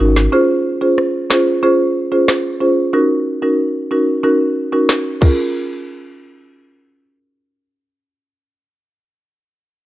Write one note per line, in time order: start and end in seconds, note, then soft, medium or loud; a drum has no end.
0.00 0.28 G#1 loud
0.00 0.17 C#4 medium
0.00 0.17 D#4 medium
0.00 0.17 F#4 medium
0.00 0.17 A#4 medium
0.00 downlifter medium
0.16 snare medium
0.32 0.78 C#4 medium
0.32 0.78 F4 medium
0.32 0.78 G#4 medium
0.32 0.78 C5 loud
0.81 0.99 C#4 medium
0.81 0.99 F4 medium
0.81 0.99 G#4 medium
0.81 0.99 C5 medium
0.98 cross-stick medium
1.30 1.48 C#4 medium
1.30 1.48 F4 medium
1.30 1.48 G#4 medium
1.30 1.48 C5 medium
1.30 snare loud
1.63 2.08 C#4 medium
1.63 2.08 F4 medium
1.63 2.08 G#4 medium
1.63 2.08 C5 loud
2.12 2.29 C#4 medium
2.12 2.29 F4 medium
2.12 2.29 G#4 medium
2.12 2.29 C5 medium
2.28 cross-stick medium
2.28 snare loud
2.61 2.78 C#4 medium
2.61 2.78 F4 medium
2.61 2.78 G#4 medium
2.61 2.78 C5 medium
2.93 3.38 C#4 medium
2.93 3.38 D#4 medium
2.93 3.38 F#4 medium
2.93 3.39 A#4 loud
3.42 3.60 C#4 medium
3.42 3.60 D#4 medium
3.42 3.60 F#4 medium
3.42 3.60 A#4 medium
3.91 4.08 C#4 medium
3.91 4.09 D#4 medium
3.91 4.09 F#4 medium
3.91 4.09 A#4 medium
4.23 4.69 C#4 medium
4.23 4.69 D#4 medium
4.23 4.69 F#4 medium
4.23 4.69 A#4 loud
4.72 4.90 C#4 medium
4.72 4.90 D#4 medium
4.72 4.90 F#4 medium
4.72 4.90 A#4 medium
4.89 snare loud
5.21 8.77 C#4 medium
5.21 8.77 F4 medium
5.21 8.78 G#4 medium
5.21 8.78 A#4 medium
5.21 kick loud
5.21 crash medium